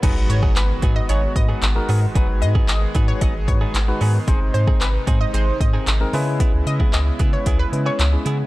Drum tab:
CC |x---------------|----------------|----------------|----------------|
HH |x-x-x-x-x-x-x-o-|x-x-x-x-x-x-x-o-|x-x-x-x-x-x-x-o-|x-x-x-x-x-x-x-x-|
CP |----x-------x---|----x-------x---|----x-------x---|----x-------x---|
BD |o--o--o---o-----|o--o--o-o-o-----|o--o--o---o-----|o--o--o-o-------|